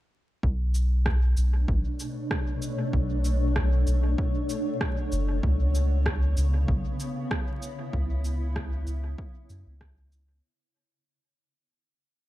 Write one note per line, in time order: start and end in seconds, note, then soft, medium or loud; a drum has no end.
0.43 1.34 B1 loud
0.43 5.43 B2 medium
0.43 kick medium
0.70 5.43 A3 medium
0.70 5.43 D4 medium
0.75 shaker medium
1.06 10.43 C#5 medium
1.06 kick loud
1.06 cross-stick medium
1.37 1.65 B1 medium
1.37 shaker soft
1.68 1.83 A1 medium
1.68 kick loud
2.00 shaker soft
2.31 kick loud
2.31 cross-stick medium
2.62 shaker soft
2.93 3.84 B1 loud
2.93 kick loud
3.25 shaker medium
3.56 kick loud
3.56 cross-stick medium
3.87 4.15 B1 medium
3.87 shaker medium
4.18 kick loud
4.50 shaker medium
4.81 kick loud
4.81 cross-stick medium
5.12 5.40 F#1 medium
5.12 shaker medium
5.43 6.34 C#2 loud
5.43 10.43 C#3 medium
5.43 kick loud
5.51 10.43 B3 medium
5.75 shaker medium
6.06 kick loud
6.06 cross-stick medium
6.37 6.65 C#2 medium
6.37 shaker medium
6.50 10.43 E4 medium
6.68 6.83 B1 medium
6.68 kick loud
7.00 shaker soft
7.31 kick loud
7.31 cross-stick medium
7.62 shaker medium
7.93 8.84 C#2 loud
7.93 kick loud
8.25 shaker medium
8.56 kick loud
8.56 cross-stick medium
8.87 9.15 C#2 medium
8.87 shaker soft
9.18 kick loud
9.50 9.65 F#2 medium
9.50 shaker medium
9.66 10.41 C#2 medium
9.81 kick loud
9.81 cross-stick medium
10.12 shaker soft